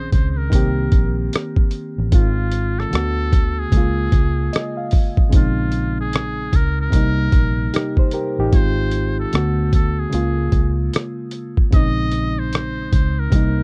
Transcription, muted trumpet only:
Already playing: C5
0.13 C5
0.31 C5
0.37 A#4
2.14 F4
2.79 A4
3.59 G#4
5.37 F4
6.01 G#4
6.56 A#4
6.81 A#4
8.55 C5
9.19 A4
9.74 A4
9.99 G#4
11.74 D#5
12.39 C5
12.94 C5
13.19 A#4

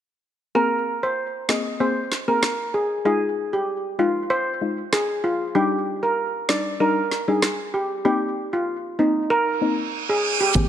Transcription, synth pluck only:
0.55 A#3 C4 G#4
1.49 A#3 C4 G#4
1.80 A#3 C4 G#4
2.28 A#3 C4 G#4
3.05 G#3 D#4 F4
3.99 G#3 D#4 F4
4.61 G#3 D#4 F4
5.55 G3 D4 D#4
6.49 G3 D4 D#4
6.80 G3 D4 D#4
7.28 G3 D4 D#4
8.05 A#3 C4 D#4
8.99 A#3 C4 D#4
9.61 A#3 C4 D#4
10.55 A#3 C4 G#4

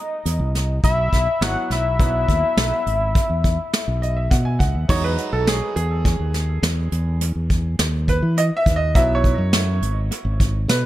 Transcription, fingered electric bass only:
0.25 E2
0.39 C2
0.84 B1
1.13 B1
1.41 G#1
1.70 B1
2.28 D#2
2.57 B1
2.86 G#1
3.30 E2
3.88 B1
4.31 B2
4.60 C#2
4.75 D#2
4.89 E2
5.33 B1
5.76 E2
6.20 D#2
6.62 E2
6.92 E2
7.35 E2
7.79 D#2
8.22 E3
8.66 D#2
8.95 B1
9.38 F#2
9.82 G#1
10.25 G#1
10.68 B2

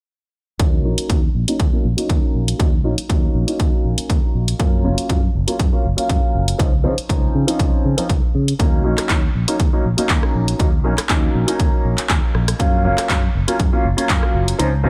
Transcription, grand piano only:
0.59 F#3 A#3 C#4 D#4
0.84 F#3 A#3 C#4 D#4
1.09 F#3 A#3 C#4 D#4
1.47 F#3 A#3 C#4 D#4
1.72 F#3 A#3 C#4 D#4
1.97 F#3 A#3 C#4 D#4
2.59 F#3 A#3 C#4 D#4
2.84 F#3 A#3 C#4 D#4
3.09 F#3 A#3 C#4 D#4
3.47 F#3 A#3 C#4 D#4
4.59 F#3 A#3 C#4 F4
4.84 F#3 A#3 C#4 F4
5.09 F#3 A#3 C#4 F4
5.47 F#3 A#3 C#4 F4
5.72 F#3 A#3 C#4 F4
5.97 F#3 A#3 C#4 F4
6.58 F3 C4 C#4 D#4
6.84 F3 C4 C#4 D#4
7.09 F3 C4 C#4 D#4
7.47 F3 C4 C#4 D#4
7.97 F3 C4 C#4 D#4
8.59 F#3 A#3 C#4 D#4
8.84 F#3 A#3 C#4 D#4
9.09 F#3 A#3 C#4 D#4
9.48 F#3 A#3 C#4 D#4
9.73 F#3 A#3 C#4 D#4
9.97 F#3 A#3 C#4 D#4
10.59 F#3 A#3 C#4 D#4
10.84 F#3 A#3 C#4 D#4
11.09 F#3 A#3 C#4 D#4
11.47 F#3 A#3 C#4 D#4
12.59 F#3 A#3 C#4 F4
12.84 F#3 A#3 C#4 F4
13.09 F#3 A#3 C#4 F4
13.47 F#3 A#3 C#4 F4
13.72 F#3 A#3 C#4 F4
13.97 F#3 A#3 C#4 F4
14.59 F3 C4 C#4 D#4
14.84 F3 C4 C#4 D#4

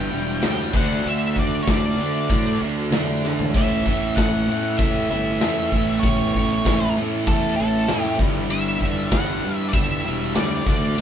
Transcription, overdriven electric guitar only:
Already playing: G2 D3 G3
0.11 G2 D3 G3
0.43 G2 D3 G3
0.75 D3 A3 D4
1.07 D3 A3 D4
1.38 D3 A3 D4
1.69 D3 A3 D4
2.00 D3 A3 D4
2.31 D3 A3 D4
2.62 D3 A3 D4
2.93 D3 A3 D4
3.25 D3 A3 D4
3.55 A2 E3 A3
3.86 A2 E3 A3
4.18 A2 E3 A3
4.49 A2 E3 A3
4.81 A2 E3 A3
5.10 A2 E3 A3
5.42 A2 E3 A3
5.73 A2 E3 A3
6.05 A2 E3 A3
6.36 A2 E3 A3
6.67 A2 E3 A3
6.97 A2 E3 A3
7.29 A2 E3 A3
7.58 A2 E3 A3
7.90 A2 E3 A3
8.19 G2 D3 G3
8.51 G2 D3 G3
8.81 G2 D3 G3
9.13 G2 D3 G3
9.43 G2 D3 G3
9.73 G2 D3 G3
10.03 G2 D3 G3
10.36 G2 D3 G3
10.67 D3 A3 D4

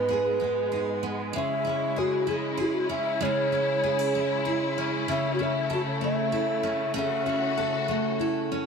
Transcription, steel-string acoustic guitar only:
Already playing: B3 D#4
0.09 G#4
0.40 D#4
0.72 G#4
1.03 B3
1.33 G#3
1.65 E4
1.96 G#4
2.27 E4
2.58 G#4
2.89 C#4
3.21 G#3
3.53 E4
3.83 F#4
3.99 G#4
4.15 E4
4.45 G#4
4.78 C#4
5.08 C#4
5.39 E4
5.70 A4
6.01 E4
6.32 A4
6.63 C#4
6.94 C#4
7.26 E4
7.57 A4
7.88 E4
8.21 A4
8.52 C#4

